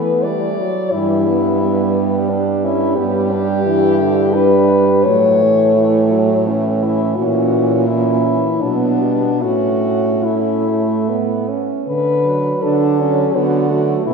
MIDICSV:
0, 0, Header, 1, 5, 480
1, 0, Start_track
1, 0, Key_signature, 2, "major"
1, 0, Tempo, 682594
1, 654, Time_signature, 3, 2, 24, 8
1, 3062, Tempo, 704225
1, 5462, Tempo, 742574
1, 5942, Tempo, 811908
1, 7862, Tempo, 729040
1, 9358, End_track
2, 0, Start_track
2, 0, Title_t, "French horn"
2, 0, Program_c, 0, 60
2, 0, Note_on_c, 0, 71, 75
2, 165, Note_on_c, 0, 74, 92
2, 176, Note_off_c, 0, 71, 0
2, 640, Note_on_c, 0, 64, 81
2, 651, Note_off_c, 0, 74, 0
2, 1617, Note_off_c, 0, 64, 0
2, 1855, Note_on_c, 0, 64, 83
2, 2075, Note_off_c, 0, 64, 0
2, 2080, Note_on_c, 0, 67, 97
2, 3058, Note_on_c, 0, 71, 98
2, 3068, Note_off_c, 0, 67, 0
2, 3528, Note_on_c, 0, 73, 97
2, 3538, Note_off_c, 0, 71, 0
2, 4504, Note_off_c, 0, 73, 0
2, 4748, Note_on_c, 0, 64, 85
2, 4975, Note_on_c, 0, 66, 85
2, 4985, Note_off_c, 0, 64, 0
2, 5461, Note_on_c, 0, 64, 79
2, 5471, Note_off_c, 0, 66, 0
2, 5938, Note_on_c, 0, 62, 82
2, 5947, Note_off_c, 0, 64, 0
2, 6413, Note_on_c, 0, 66, 85
2, 6422, Note_off_c, 0, 62, 0
2, 6906, Note_on_c, 0, 64, 67
2, 6914, Note_off_c, 0, 66, 0
2, 7630, Note_off_c, 0, 64, 0
2, 7868, Note_on_c, 0, 71, 97
2, 8361, Note_on_c, 0, 69, 81
2, 8371, Note_off_c, 0, 71, 0
2, 8837, Note_on_c, 0, 66, 91
2, 8846, Note_off_c, 0, 69, 0
2, 9303, Note_off_c, 0, 66, 0
2, 9307, Note_on_c, 0, 64, 86
2, 9358, Note_off_c, 0, 64, 0
2, 9358, End_track
3, 0, Start_track
3, 0, Title_t, "French horn"
3, 0, Program_c, 1, 60
3, 0, Note_on_c, 1, 59, 58
3, 189, Note_on_c, 1, 57, 56
3, 199, Note_off_c, 1, 59, 0
3, 490, Note_off_c, 1, 57, 0
3, 658, Note_on_c, 1, 55, 66
3, 897, Note_on_c, 1, 59, 67
3, 907, Note_off_c, 1, 55, 0
3, 1127, Note_off_c, 1, 59, 0
3, 1131, Note_on_c, 1, 59, 66
3, 1615, Note_on_c, 1, 62, 73
3, 1625, Note_off_c, 1, 59, 0
3, 1860, Note_on_c, 1, 61, 69
3, 1870, Note_off_c, 1, 62, 0
3, 2085, Note_on_c, 1, 59, 67
3, 2096, Note_off_c, 1, 61, 0
3, 2331, Note_on_c, 1, 62, 76
3, 2341, Note_off_c, 1, 59, 0
3, 2555, Note_off_c, 1, 62, 0
3, 2560, Note_on_c, 1, 64, 68
3, 3061, Note_on_c, 1, 62, 67
3, 3071, Note_off_c, 1, 64, 0
3, 3547, Note_on_c, 1, 57, 70
3, 3557, Note_off_c, 1, 62, 0
3, 4504, Note_on_c, 1, 61, 64
3, 4514, Note_off_c, 1, 57, 0
3, 4975, Note_off_c, 1, 61, 0
3, 4979, Note_on_c, 1, 61, 66
3, 5433, Note_off_c, 1, 61, 0
3, 5459, Note_on_c, 1, 61, 67
3, 5831, Note_off_c, 1, 61, 0
3, 5941, Note_on_c, 1, 59, 67
3, 6412, Note_off_c, 1, 59, 0
3, 6426, Note_on_c, 1, 61, 60
3, 6902, Note_off_c, 1, 61, 0
3, 6916, Note_on_c, 1, 61, 63
3, 7140, Note_off_c, 1, 61, 0
3, 7157, Note_on_c, 1, 57, 67
3, 7400, Note_on_c, 1, 59, 68
3, 7409, Note_off_c, 1, 57, 0
3, 7636, Note_on_c, 1, 61, 57
3, 7644, Note_off_c, 1, 59, 0
3, 7868, Note_off_c, 1, 61, 0
3, 8365, Note_on_c, 1, 62, 74
3, 8609, Note_on_c, 1, 61, 77
3, 8619, Note_off_c, 1, 62, 0
3, 8841, Note_on_c, 1, 59, 65
3, 8851, Note_off_c, 1, 61, 0
3, 9068, Note_on_c, 1, 57, 61
3, 9078, Note_off_c, 1, 59, 0
3, 9305, Note_off_c, 1, 57, 0
3, 9314, Note_on_c, 1, 59, 68
3, 9358, Note_off_c, 1, 59, 0
3, 9358, End_track
4, 0, Start_track
4, 0, Title_t, "French horn"
4, 0, Program_c, 2, 60
4, 0, Note_on_c, 2, 57, 57
4, 184, Note_on_c, 2, 55, 63
4, 195, Note_off_c, 2, 57, 0
4, 426, Note_on_c, 2, 54, 62
4, 437, Note_off_c, 2, 55, 0
4, 660, Note_off_c, 2, 54, 0
4, 668, Note_on_c, 2, 52, 61
4, 973, Note_off_c, 2, 52, 0
4, 1148, Note_on_c, 2, 55, 68
4, 2072, Note_off_c, 2, 55, 0
4, 2099, Note_on_c, 2, 55, 70
4, 2569, Note_off_c, 2, 55, 0
4, 2573, Note_on_c, 2, 52, 72
4, 2817, Note_on_c, 2, 50, 68
4, 2827, Note_off_c, 2, 52, 0
4, 3067, Note_on_c, 2, 55, 64
4, 3078, Note_off_c, 2, 50, 0
4, 3536, Note_off_c, 2, 55, 0
4, 3541, Note_on_c, 2, 54, 64
4, 3786, Note_on_c, 2, 52, 69
4, 3796, Note_off_c, 2, 54, 0
4, 4018, Note_off_c, 2, 52, 0
4, 4022, Note_on_c, 2, 52, 73
4, 4269, Note_on_c, 2, 54, 69
4, 4279, Note_off_c, 2, 52, 0
4, 4512, Note_on_c, 2, 52, 62
4, 4522, Note_off_c, 2, 54, 0
4, 4979, Note_off_c, 2, 52, 0
4, 4983, Note_on_c, 2, 52, 62
4, 5435, Note_off_c, 2, 52, 0
4, 5463, Note_on_c, 2, 52, 61
4, 5944, Note_on_c, 2, 54, 62
4, 5953, Note_off_c, 2, 52, 0
4, 6178, Note_on_c, 2, 55, 55
4, 6187, Note_off_c, 2, 54, 0
4, 6350, Note_off_c, 2, 55, 0
4, 6423, Note_on_c, 2, 57, 57
4, 6901, Note_off_c, 2, 57, 0
4, 6910, Note_on_c, 2, 57, 60
4, 7645, Note_off_c, 2, 57, 0
4, 8114, Note_on_c, 2, 54, 56
4, 8591, Note_off_c, 2, 54, 0
4, 8598, Note_on_c, 2, 54, 56
4, 9059, Note_off_c, 2, 54, 0
4, 9064, Note_on_c, 2, 54, 54
4, 9299, Note_off_c, 2, 54, 0
4, 9305, Note_on_c, 2, 57, 60
4, 9358, Note_off_c, 2, 57, 0
4, 9358, End_track
5, 0, Start_track
5, 0, Title_t, "French horn"
5, 0, Program_c, 3, 60
5, 0, Note_on_c, 3, 52, 68
5, 466, Note_off_c, 3, 52, 0
5, 654, Note_on_c, 3, 43, 75
5, 2070, Note_off_c, 3, 43, 0
5, 2100, Note_on_c, 3, 43, 76
5, 3517, Note_off_c, 3, 43, 0
5, 3548, Note_on_c, 3, 45, 76
5, 4965, Note_off_c, 3, 45, 0
5, 4989, Note_on_c, 3, 46, 79
5, 5836, Note_off_c, 3, 46, 0
5, 5946, Note_on_c, 3, 47, 65
5, 6429, Note_on_c, 3, 45, 65
5, 6438, Note_off_c, 3, 47, 0
5, 7663, Note_off_c, 3, 45, 0
5, 7872, Note_on_c, 3, 50, 75
5, 8306, Note_off_c, 3, 50, 0
5, 8367, Note_on_c, 3, 50, 68
5, 8784, Note_off_c, 3, 50, 0
5, 8836, Note_on_c, 3, 50, 77
5, 9250, Note_off_c, 3, 50, 0
5, 9315, Note_on_c, 3, 47, 86
5, 9358, Note_off_c, 3, 47, 0
5, 9358, End_track
0, 0, End_of_file